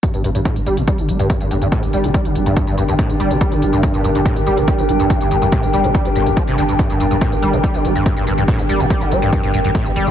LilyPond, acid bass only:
\new Staff \with { instrumentName = "Acid bass" } { \clef bass \time 4/4 \key g \minor \tempo 4 = 142 g,16 g,16 g,16 g,16 a,16 g,16 g16 a,16 g16 d16 g16 g,16 r16 g,16 g,16 g,16 | a,16 g,16 g16 a,16 g16 d16 g16 g,16 g,16 g,16 g,16 g,16 a,16 g,16 g16 a,16 | g16 d16 g16 g,16 r16 g,16 g,16 g,16 a,16 g,16 g16 a,16 g16 d16 g16 g,16 | g,16 g,16 g,16 g,16 a,16 g,16 g16 a,16 g16 d16 g,,16 bes,16 f16 c16 d16 g,16 |
g,16 g,16 g,16 g,16 a,16 g,16 g16 a,16 g16 d16 g16 g,16 r16 g,16 g,16 g,16 | a,16 g,16 g16 a,16 g16 d16 g16 g,16 g,16 g,16 g,16 g,16 a,16 g,16 g16 a,16 | }